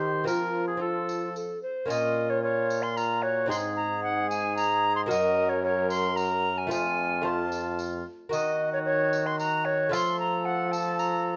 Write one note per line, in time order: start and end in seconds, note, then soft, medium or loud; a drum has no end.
0.00 0.24 D#3 medium
0.00 0.29 D#3 medium
0.00 0.22 A#3 soft
0.00 0.29 G4 medium
0.00 0.26 C5 medium
0.24 1.59 F3 medium
0.24 1.63 F3 medium
0.24 0.78 A#3 soft
0.24 0.76 C4 soft
0.24 0.78 F4 soft
0.24 0.33 F#4 medium
0.24 0.67 A#4 medium
0.24 tambourine medium
0.32 0.81 F4 medium
0.67 0.80 G#4 medium
0.77 1.85 C4 soft
0.77 1.86 F4 soft
0.77 1.35 A4 medium
0.81 1.29 F4 medium
1.09 tambourine soft
1.36 1.61 A4 medium
1.36 tambourine soft
1.63 1.89 C5 medium
1.86 3.47 A#2 medium
1.86 3.45 A#3 medium
1.86 3.45 C#4 medium
1.86 3.46 F4 medium
1.86 2.31 D#5 loud
1.90 3.47 A#2 medium
1.90 2.40 F4 medium
1.90 tambourine medium
2.30 2.42 C#5 medium
2.43 2.96 F4 medium
2.43 2.84 C#5 medium
2.70 tambourine medium
2.83 2.98 C6 medium
2.97 3.25 F4 medium
2.97 3.24 A#5 medium
2.97 tambourine medium
3.22 3.51 F#4 medium
3.22 3.49 C#5 loud
3.46 5.06 G#2 medium
3.46 5.04 C4 medium
3.46 5.05 D#4 medium
3.46 5.06 G#4 medium
3.46 5.10 G#4 medium
3.46 3.56 C6 loud
3.51 5.08 G#2 medium
3.51 tambourine medium
3.76 4.03 A#5 medium
4.03 4.29 F#5 medium
4.30 4.56 G#5 loud
4.30 tambourine medium
4.57 4.95 A#5 loud
4.57 tambourine medium
4.96 5.02 C6 medium
5.06 6.67 F#2 medium
5.06 6.65 A#3 medium
5.06 6.65 F#4 medium
5.06 6.66 A#4 medium
5.06 5.51 D#5 loud
5.11 6.67 F#2 medium
5.11 5.61 A#4 medium
5.11 tambourine medium
5.49 5.62 C#5 loud
5.63 6.17 A#4 medium
5.63 5.90 C#5 loud
5.90 6.18 C6 loud
5.90 tambourine medium
6.16 6.71 A#4 medium
6.16 6.59 A#5 loud
6.16 tambourine soft
6.58 6.70 G#5 medium
6.67 8.01 F2 medium
6.67 7.20 A3 medium
6.67 7.22 F4 medium
6.67 7.23 C5 medium
6.71 8.03 F2 medium
6.71 7.24 F4 medium
6.71 7.26 G#5 loud
6.71 tambourine medium
7.21 8.28 A3 medium
7.21 8.28 F4 medium
7.21 8.04 F4 medium
7.21 8.29 C5 medium
7.21 7.79 A5 medium
7.52 tambourine medium
7.79 tambourine soft
8.29 9.89 D#3 medium
8.29 9.87 A#3 medium
8.29 9.88 F#4 medium
8.29 9.36 F#4 medium
8.29 9.89 D#5 medium
8.29 8.70 D#5 loud
8.29 tambourine medium
8.73 8.79 C#5 medium
8.85 9.28 C#5 loud
9.13 tambourine medium
9.26 9.39 C6 medium
9.39 9.91 F#4 medium
9.39 9.67 A#5 medium
9.39 tambourine medium
9.65 9.95 C#5 loud
9.89 11.36 F3 medium
9.89 11.36 A3 medium
9.89 11.36 F4 medium
9.89 11.36 A4 medium
9.89 11.36 F5 medium
9.89 tambourine medium
9.94 10.19 C6 medium
10.20 10.47 A#5 medium
10.45 10.73 F#5 medium
10.72 11.01 A5 loud
10.72 tambourine medium
10.99 11.36 A#5 loud
10.99 tambourine soft